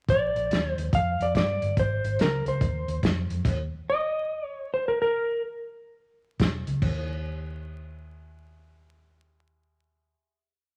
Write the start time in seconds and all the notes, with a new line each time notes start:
0.09 A#1 D5, kick, closed hi-hat
0.36 A#1, closed hi-hat
0.51 D#2, snare, closed hi-hat
0.72 C5
0.77 D#2, closed hi-hat
0.93 F2 F5, kick, closed hi-hat
1.20 F2 D5, closed hi-hat
1.35 G2 D5, kick, snare, closed hi-hat
1.62 G1, closed hi-hat
1.77 G#1 C5, kick, closed hi-hat
2.04 G#1, closed hi-hat
2.19 C#2 A#4, snare, closed hi-hat
2.46 C#2 C5, closed hi-hat
2.61 D#2, kick, closed hi-hat
2.88 D#2, closed hi-hat
3.03 F2, kick, snare, closed hi-hat
3.30 F2, closed hi-hat
3.45 D#2, kick, closed hi-hat, crash
3.90 D#5
4.46 C#5
4.74 C5
4.88 A#4
5.02 A#4
6.40 E1, kick, snare, closed hi-hat
6.67 C#2, closed hi-hat
6.82 D#2, kick, crash